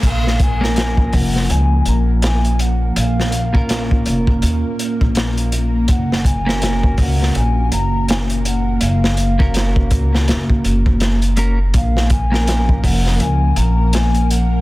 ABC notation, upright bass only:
X:1
M:4/4
L:1/16
Q:"Swing 16ths" 1/4=82
K:Bbm
V:1 name="Upright bass" clef=bass
B,,,6 F,,,2 D,,2 B,,,6 | B,,,6 F,,,2 E,, z2 B,,,4- B,,, | G,,,6 D,,2 B,,,2 G,,,6 | G,,,6 D,,2 G,,,2 G,,,6 |
B,,,6 F,,,2 D,,2 B,,,6 |]